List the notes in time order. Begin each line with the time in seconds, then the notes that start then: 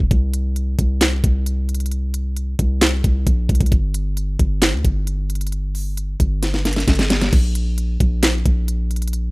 0.00 D#1, kick
0.11 C2, kick, closed hi-hat
0.34 closed hi-hat
0.56 closed hi-hat
0.79 C2, kick, closed hi-hat
1.01 snare, clap, closed hi-hat
1.24 C2, kick, closed hi-hat
1.46 closed hi-hat
1.69 closed hi-hat
1.75 closed hi-hat
1.80 closed hi-hat
1.86 closed hi-hat
1.92 closed hi-hat
2.14 closed hi-hat
2.37 closed hi-hat
2.59 C2, kick, closed hi-hat
2.82 snare, clap, closed hi-hat
3.04 C2, kick, closed hi-hat
3.27 A#1, kick, closed hi-hat
3.49 C2, kick, closed hi-hat
3.55 closed hi-hat
3.61 C2, kick, closed hi-hat
3.66 closed hi-hat
3.72 G1, kick, closed hi-hat
3.94 closed hi-hat
4.17 closed hi-hat
4.39 G1, kick, closed hi-hat
4.62 snare, clap, closed hi-hat
4.73 D2
4.85 G1, kick, closed hi-hat
5.07 closed hi-hat
5.30 closed hi-hat
5.35 closed hi-hat
5.41 closed hi-hat
5.47 closed hi-hat
5.52 closed hi-hat
5.75 open hi-hat
5.97 closed hi-hat
6.20 G1, kick, closed hi-hat
6.43 snare, closed hi-hat
6.54 snare
6.65 snare, closed hi-hat
6.73 snare, closed hi-hat
6.80 closed hi-hat
6.88 G1, kick, snare, closed hi-hat
6.95 snare, closed hi-hat
7.03 closed hi-hat
7.10 snare, closed hi-hat
7.21 snare
7.33 A#1, kick, closed hi-hat, crash
7.55 closed hi-hat
7.78 closed hi-hat
8.00 A#1, kick, closed hi-hat
8.23 snare, clap, closed hi-hat
8.46 A#1, kick, closed hi-hat
8.68 closed hi-hat
8.91 closed hi-hat
8.96 closed hi-hat
9.02 closed hi-hat
9.08 closed hi-hat
9.13 closed hi-hat